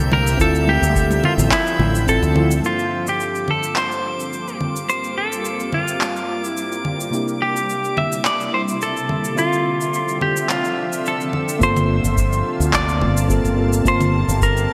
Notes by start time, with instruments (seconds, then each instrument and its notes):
Already playing: fretless electric bass C2, ambient pad C3 G3 A#3 E5, fm electric piano A#3 D4 E4 G4, clean electric guitar A4, synth texture G6
0.12 clean electric guitar A#4, high conga, low conga
0.27 shaker
0.37 fretless electric bass D2, ambient pad D3 F3 C4, fm electric piano C4 E4 F4, kick, shaker
0.41 fm electric piano A4, clean electric guitar A4
0.55 shaker
0.68 clean electric guitar G4, high conga
0.82 fretless electric bass D2, shaker
0.95 kick, shaker
1.11 high conga, shaker
1.24 clean electric guitar F4, low conga
1.38 fretless electric bass A1, low conga, shaker
1.52 clean electric guitar E4, kick, clap, shaker
1.67 shaker
1.79 fretless electric bass A1, high conga, low conga
1.95 shaker
2.07 fm electric piano C4 E4 F4 A4, clean electric guitar A4, kick, shaker
2.22 fretless electric bass D2, low conga, shaker
2.35 fm electric piano C4 E4 F4 A4, low conga
2.51 high conga, shaker
2.62 fm electric piano G2 A#3 C4 D4 F4 A4, ambient pad G3 A#3 C4 F4 A4, clean electric guitar F4, synth texture D6, shaker
2.79 shaker
3.07 clean electric guitar G4, shaker
3.20 shaker
3.35 shaker
3.48 clean electric guitar A4, low conga
3.63 shaker
3.76 clean electric guitar C5, clap, shaker
3.92 shaker
4.20 shaker
4.33 shaker
4.48 shaker
4.61 low conga
4.76 shaker
4.89 clean electric guitar C5, shaker
5.04 shaker
5.18 clean electric guitar A4
5.32 shaker
5.45 shaker
5.60 shaker
5.72 clean electric guitar F4, low conga
5.88 shaker
6.01 clap, shaker
6.16 shaker
6.44 clean electric guitar E4, shaker
6.57 shaker
6.72 shaker
6.85 low conga
7.00 shaker
7.10 fm electric piano C3 A#3 D4 E4, ambient pad C3 E4, shaker
7.14 fm electric piano G4
7.28 shaker
7.42 clean electric guitar G4
7.56 shaker
7.69 shaker
7.85 shaker
7.97 clean electric guitar E5, low conga
8.12 shaker
8.25 clean electric guitar D5, clap, shaker
8.41 shaker
8.54 clean electric guitar C5
8.68 shaker
8.81 clean electric guitar A4, shaker
8.97 shaker
9.09 low conga
9.25 shaker
9.35 fm electric piano D3 C4 F4 A4 E5, ambient pad D3 F3 C4 E5, clean electric guitar F4, shaker
9.53 shaker
9.81 shaker
9.94 shaker
10.09 shaker
10.21 clean electric guitar G4, low conga
10.37 shaker
10.49 clean electric guitar F4, clap, shaker
10.65 shaker
10.93 shaker
11.06 clean electric guitar A4, shaker
11.21 shaker
11.33 low conga
11.49 shaker
11.59 fretless electric bass G1, ambient pad C3 A#3 F4 A5, fm electric piano A#3 C4 F4, kick, shaker
11.63 fm electric piano A4, clean electric guitar C5
11.77 low conga, shaker
12.04 fretless electric bass G1, shaker
12.17 kick, shaker
12.33 shaker
12.60 fretless electric bass D2, shaker
12.73 clean electric guitar D5, kick, clap, shaker
12.89 shaker
13.01 fretless electric bass G1, low conga
13.17 shaker
13.29 fm electric piano A#3 C4 F4 A4, kick, shaker
13.44 fretless electric bass G1, shaker
13.57 fm electric piano A#3 C4 F4 A4
13.73 shaker
13.83 fretless electric bass G1, fm electric piano A#3 C4 F4, ambient pad G4, kick, shaker
13.87 clean electric guitar C5, fm electric piano A5
14.01 low conga, shaker
14.28 fretless electric bass G1, shaker
14.42 clean electric guitar A#4, kick, shaker
14.57 shaker